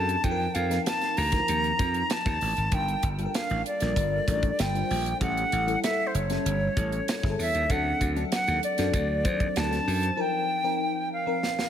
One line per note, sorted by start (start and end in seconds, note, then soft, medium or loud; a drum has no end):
0.00 0.15 F#2 medium
0.00 0.26 F#3 medium
0.00 0.24 C4 medium
0.00 0.26 D4 medium
0.00 0.26 G4 medium
0.00 0.26 G#4 soft
0.00 0.25 A4 medium
0.00 0.25 A5 medium
0.09 closed hi-hat soft
0.23 0.46 F2 loud
0.23 0.68 F3 medium
0.23 0.68 C4 medium
0.23 0.68 D#4 medium
0.23 0.31 A4 medium
0.23 0.56 G5 loud
0.23 kick medium
0.23 closed hi-hat medium
0.31 0.70 A#4 medium
0.55 0.77 F2 loud
0.55 0.85 F5 medium
0.55 closed hi-hat medium
0.69 1.28 F3 medium
0.69 1.29 C4 medium
0.69 1.29 D#4 medium
0.69 1.29 A#4 medium
0.69 snare soft
0.69 closed hi-hat soft
0.86 1.19 A5 loud
0.86 snare medium
0.86 closed hi-hat medium
1.01 snare soft
1.01 closed hi-hat soft
1.17 1.40 D2 medium
1.17 2.13 A#5 loud
1.17 open hi-hat medium
1.32 1.76 F3 medium
1.32 1.76 C4 medium
1.32 1.76 D#4 medium
1.32 1.77 A#4 medium
1.32 kick medium
1.32 snare soft
1.32 closed hi-hat medium
1.48 1.71 D#2 loud
1.48 closed hi-hat medium
1.64 closed hi-hat soft
1.78 2.02 F2 medium
1.78 2.23 F3 medium
1.78 2.23 C4 medium
1.78 2.23 D#4 medium
1.78 2.23 A#4 medium
1.78 kick medium
1.78 closed hi-hat medium
1.94 closed hi-hat soft
2.10 2.76 A5 loud
2.10 snare medium
2.10 closed hi-hat medium
2.25 2.37 D#2 medium
2.25 2.69 F3 medium
2.25 2.69 C4 soft
2.25 2.70 D#4 medium
2.25 2.70 A#4 medium
2.25 kick medium
2.25 snare soft
2.25 closed hi-hat soft
2.41 2.53 A1 medium
2.41 open hi-hat medium
2.57 2.68 G#1 medium
2.57 closed hi-hat soft
2.72 2.94 G1 loud
2.72 3.16 G3 medium
2.72 3.16 D4 medium
2.72 3.17 F4 medium
2.72 3.17 A#4 medium
2.72 3.08 G5 loud
2.72 kick medium
2.72 closed hi-hat medium
2.88 closed hi-hat soft
3.03 3.26 G1 medium
3.03 kick medium
3.03 closed hi-hat medium
3.18 3.77 G3 medium
3.18 3.77 D4 medium
3.18 3.78 F4 medium
3.18 3.26 A4 medium
3.18 closed hi-hat soft
3.26 3.81 A#4 medium
3.26 3.36 G5 medium
3.34 3.66 F5 medium
3.34 snare medium
3.34 closed hi-hat medium
3.50 3.61 A1 medium
3.50 closed hi-hat soft
3.66 4.62 D5 medium
3.66 closed hi-hat medium
3.80 3.92 A#1 medium
3.80 4.25 G3 medium
3.80 4.25 D4 medium
3.80 4.25 F4 medium
3.80 4.26 A#4 medium
3.80 snare soft
3.80 closed hi-hat medium
3.96 4.19 G1 medium
3.96 kick medium
3.96 closed hi-hat medium
4.28 4.50 A1 medium
4.28 4.72 G3 medium
4.28 4.72 D4 medium
4.28 4.72 F4 medium
4.28 4.72 A#4 medium
4.28 kick medium
4.28 closed hi-hat medium
4.43 kick medium
4.43 closed hi-hat soft
4.59 4.81 G1 medium
4.59 5.21 G5 medium
4.59 snare medium
4.59 closed hi-hat medium
4.74 5.18 G3 medium
4.74 5.18 D4 medium
4.74 5.18 F4 medium
4.74 5.19 C5 medium
4.74 closed hi-hat soft
4.90 5.12 A#1 medium
4.90 open hi-hat medium
5.06 closed hi-hat soft
5.20 5.43 A1 loud
5.20 5.65 G3 medium
5.20 5.65 C#4 medium
5.20 5.65 E4 medium
5.20 5.65 A4 medium
5.20 5.79 F#5 medium
5.20 kick medium
5.20 closed hi-hat medium
5.37 closed hi-hat soft
5.52 5.74 A1 medium
5.52 closed hi-hat medium
5.67 6.26 G3 medium
5.67 6.26 C#4 medium
5.67 6.26 E4 medium
5.67 6.26 A4 medium
5.67 closed hi-hat soft
5.83 6.08 E5 medium
5.83 snare medium
5.83 closed hi-hat medium
6.07 6.17 C5 medium
6.14 6.36 F#1 medium
6.14 7.39 C#5 medium
6.14 closed hi-hat medium
6.30 6.73 G3 medium
6.30 6.73 C#4 medium
6.30 6.74 E4 medium
6.30 6.74 A4 medium
6.30 snare soft
6.30 closed hi-hat soft
6.45 6.67 G1 medium
6.45 closed hi-hat medium
6.77 6.99 A1 medium
6.77 7.20 G3 medium
6.77 7.20 C#4 medium
6.77 7.21 E4 medium
6.77 7.21 A4 medium
6.77 kick medium
6.77 closed hi-hat medium
6.92 closed hi-hat soft
7.08 snare medium
7.08 closed hi-hat medium
7.22 7.34 G1 medium
7.22 7.66 G3 medium
7.22 7.67 C#4 medium
7.22 7.67 E4 soft
7.22 7.30 G#4 medium
7.22 kick medium
7.22 snare soft
7.30 7.69 A4 medium
7.39 7.50 E2 medium
7.39 7.73 E5 medium
7.39 open hi-hat medium
7.55 7.66 D#2 medium
7.55 closed hi-hat soft
7.69 7.92 D2 loud
7.69 8.13 F#3 medium
7.69 8.13 C4 medium
7.69 8.14 D4 medium
7.69 8.14 A4 medium
7.69 8.05 F#5 loud
7.69 kick medium
7.69 closed hi-hat medium
8.01 8.23 D2 medium
8.01 kick medium
8.01 closed hi-hat medium
8.15 8.74 F#3 medium
8.15 8.74 C4 medium
8.15 8.75 D4 medium
8.15 8.75 A4 medium
8.15 closed hi-hat soft
8.32 8.61 F#5 loud
8.32 snare medium
8.32 closed hi-hat medium
8.47 8.59 D#2 medium
8.47 closed hi-hat soft
8.63 9.58 D5 medium
8.63 closed hi-hat medium
8.78 8.89 F#2 medium
8.78 9.22 F#3 medium
8.78 9.22 C4 medium
8.78 9.22 D4 medium
8.78 9.23 A4 medium
8.78 snare soft
8.78 closed hi-hat medium
8.94 9.25 D2 medium
8.94 kick medium
8.94 closed hi-hat medium
9.23 9.47 D#2 medium
9.23 9.68 F#3 medium
9.23 9.68 C4 medium
9.23 9.69 D4 medium
9.23 9.69 C5 medium
9.23 kick medium
9.23 closed hi-hat medium
9.40 kick medium
9.40 closed hi-hat soft
9.56 9.78 D2 medium
9.56 10.22 A5 medium
9.56 snare medium
9.56 closed hi-hat medium
9.70 10.14 F#3 medium
9.70 10.15 C4 medium
9.70 10.15 D4 soft
9.70 10.15 A4 medium
9.70 snare soft
9.70 closed hi-hat soft
9.87 10.09 F#2 medium
9.87 open hi-hat medium
10.03 closed hi-hat soft
10.17 10.61 F3 medium
10.17 10.61 C4 medium
10.17 10.62 D#4 medium
10.17 10.62 A#4 medium
10.21 11.12 G5 medium
10.64 11.23 F3 medium
10.64 11.23 C4 medium
10.64 11.23 D#4 medium
10.64 11.23 A#4 medium
11.13 11.69 F5 medium
11.26 11.69 F3 medium
11.26 11.69 C4 medium
11.26 11.69 D#4 medium
11.26 11.69 A#4 medium
11.43 snare medium
11.59 snare medium